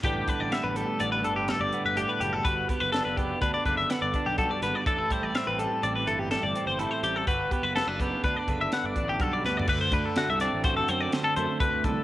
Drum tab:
CC |------------------------------|------------------------------|------------------------------|------------------------------|
HH |x--x--x--x--x--x--x--x--x--x--|x--x--x--x--x--x--x--x--x--x--|x--x--x--x--x--x--x--x--x--x--|x--x--x--x--x--x--x--x--x-----|
SD |------o-----------o-----------|------o-----------o--------o--|------o-----------o-----------|------o-----------o--------o--|
FT |------------------------------|------------------------------|------------------------------|-----------------------------o|
BD |o--o--------------------------|o--o-----o--o--o-----o--o-----|o--o--------------------------|o--o-----o--o--o-----o--o-----|

CC |x-----------------------------|
HH |---x--x--x--x--x--x--x--x--x--|
SD |------o--o--------o-----------|
FT |------------------------------|
BD |o--o--------o-----------o--o--|